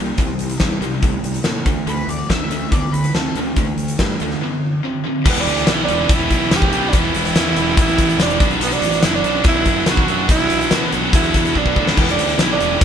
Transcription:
Already playing: C2 C3 A#3
0.18 C2 C3 G3, kick, closed hi-hat
0.38 C2, closed hi-hat
0.50 closed hi-hat
0.60 E2 C3 G3, kick, snare, closed hi-hat
0.81 C2 C3 G3, closed hi-hat
1.02 C2 C3 A3, kick, closed hi-hat
1.23 C2, closed hi-hat
1.34 closed hi-hat
1.44 A2 C3 A#3, snare, closed hi-hat
1.65 D2 D3 A3, kick, closed hi-hat
1.87 D2 D3 A3 B4, closed hi-hat
2.07 D2 D5, closed hi-hat
2.29 D2 D3 A3 E5, kick, snare, closed hi-hat
2.49 D2 D3 A3, closed hi-hat
2.71 D2 D3 B3 D5, kick, closed hi-hat
2.92 D2 B4, closed hi-hat
3.04 closed hi-hat
3.14 D2 D3 C4 A4, snare, closed hi-hat
3.35 D2 D3 C4, closed hi-hat
3.56 D2 D3 A3, kick, closed hi-hat
3.78 D2, closed hi-hat
3.88 closed hi-hat
3.99 G2 D3 A3, kick, snare, closed hi-hat
4.20 D2 D3 A3, closed hi-hat
4.31 snare
4.41 D3 B3
4.83 D3 C4
5.04 D3 C4
5.24 E1 E2 B2 E3 G3 B3 E4 G4, kick, crash
5.29 B3
5.36 closed hi-hat
5.41 D4
5.46 D2, closed hi-hat
5.57 closed hi-hat
5.67 B1 E2 B2 E3 G3 B3 E4 G4, snare, closed hi-hat
5.73 E4
5.84 D4
5.88 E1 E2 B2 E3 G3 B3 E4 G4, closed hi-hat
6.09 E1 E2 B2 E3 G3 B3 E4 G4, kick, closed hi-hat
6.14 E4
6.31 B1, kick, closed hi-hat
6.51 E1 E2 B2 E3 G3 B3 E4 G4, snare, closed hi-hat
6.56 G4
6.62 kick
6.71 B1 E2 B2 E3 G3 B3 E4 G4, closed hi-hat
6.89 E1 E2 D4, closed hi-hat
6.93 B2 E3 G3 B3 E4 G4, kick
6.99 E4
7.14 E1, closed hi-hat
7.25 closed hi-hat
7.35 E2 B2 E3 G3 B3 E4 G4, snare, closed hi-hat
7.55 E1 E2 B2 E3 G3 B3 E4 G4, closed hi-hat
7.77 A1 E2 B2 E3 G3 B3 E4 G4, kick, closed hi-hat
7.81 E4
7.88 closed hi-hat
7.98 kick, closed hi-hat
8.09 closed hi-hat
8.18 E1 E2 B2 E3 G3 B3 D4 E4 G4, snare, closed hi-hat
8.30 closed hi-hat
8.40 B1 B2 F#3 B3 D4 F#4, kick, closed hi-hat
8.51 closed hi-hat
8.59 B1 B2 F#3 B3 D4 F#4, closed hi-hat
8.64 B3
8.71 D4, closed hi-hat
8.82 A1, closed hi-hat
8.92 closed hi-hat
9.03 F#1 B2 F#3 B3 D4 E4 F#4, snare, closed hi-hat
9.15 D4
9.23 B1 B2 F#3 B3 D4 F#4, closed hi-hat
9.44 B1 B2 F#3 B3 D4 E4 F#4, kick, closed hi-hat
9.66 F#2, kick, closed hi-hat
9.86 B1 B2 F#3 B3 D4 F#4, snare, closed hi-hat
9.90 F#4
9.97 kick, snare
10.07 F#2 B2 F#3 B3 D4 F#4, closed hi-hat
10.28 B1 B2 F#3 B3 D4 E4 F#4, kick, closed hi-hat
10.50 B1, closed hi-hat
10.61 closed hi-hat
10.70 B2 F#3 B3 D4 F#4, snare, closed hi-hat
10.91 B1 B2 F#3 B3 D4 F#4, closed hi-hat
11.12 E2 B2 F#3 B3 D4 E4 F#4, kick, closed hi-hat
11.24 closed hi-hat
11.34 kick, closed hi-hat
11.45 closed hi-hat
11.54 B1 B2 F#3 B3 D4 F#4, kick
11.66 kick
11.75 A2 B2 F#3 B3 D4 F#4, kick
11.87 snare
11.96 E1 E2 B2 E3 G3 B3 E4 G4, kick, crash
12.01 B3
12.09 D4, closed hi-hat
12.18 D2, closed hi-hat
12.29 closed hi-hat
12.38 B1 E2 B2 E3 G3 B3 E4 G4, snare, closed hi-hat
12.43 E4
12.52 D4
12.59 E1 E2 B2 E3 G3 B3 E4 G4, closed hi-hat
12.81 E1 E2 B2 E3 B3, kick, closed hi-hat

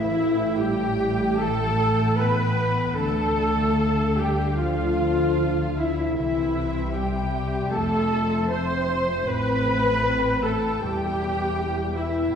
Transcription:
Already playing: A1 A2 E3 E4 A4 E5 G5 A5
0.00 A3
0.19 A4
0.39 G4
0.57 G3 G4 G5
0.80 A5
1.00 G5
1.38 E3 A3 A4 A5
1.59 A3
2.00 G4
2.17 B3 B4 G5 B5
2.39 A5
2.60 G5
2.79 A4
2.97 D2 D3 A3 A4 A5
3.19 A3
3.61 F4
3.78 D5 F5
4.18 G3 G4 G5
4.41 A4
4.57 F3 F4 F5
4.62 D4
4.81 A3
5.20 F4
5.60 A5
5.77 F3 E4 E5
5.99 A4
6.15 C2 C3 E3 E4 E5
6.39 C4
6.59 B4
6.78 C5
6.93 G3 G4 E5 G5
7.15 B5
7.34 E5
7.53 C5
7.71 F1 F2 A3 A4 A5
7.92 C4
8.31 C5
8.50 C4 C5 E5 C6
8.69 A5
8.89 E5
9.08 C5
9.26 A1 A2 C4 B4 G5 B5
9.46 C4
9.66 G4
10.25 G5
10.42 A3 A4 A5
10.62 C5
10.81 E1 E2 G3 G4 G5
11.01 B3
11.20 G4
11.39 B4
11.77 G5
11.94 E3 E4 E5
12.16 B4

